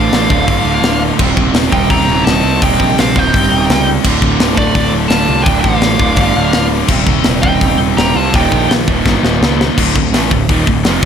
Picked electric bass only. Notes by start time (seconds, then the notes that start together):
0.12 A1
0.30 D1
0.47 G1
0.65 D1
0.82 D1
1.20 D#1
1.37 D#1
1.54 D#1
1.73 D#1
1.90 D#1
2.08 D#1
2.26 D#1
2.44 C2
2.62 D#1
2.80 A#1
2.99 A#1
3.16 D#1
3.35 G1
3.52 D#1
3.70 C#2
4.05 D1
4.23 D1
4.40 D1
4.58 D1
4.75 D1
4.93 D1
5.10 D1
5.29 C2
5.46 D1
5.64 A1
5.80 A1
6.00 D1
6.18 G1
6.36 D1
6.53 D1
6.88 D#1
7.06 D#1
7.26 D#1
7.43 D#1
7.61 D#1
7.78 D#1
7.97 D#1
8.15 C2
8.34 D#1
8.52 A#1
8.70 A#1
8.88 D#1
9.05 G1
9.23 D#1
9.41 C#2
9.78 D1
9.95 D1
10.12 A1
10.32 D1
10.49 D#1
10.67 D1
10.86 F1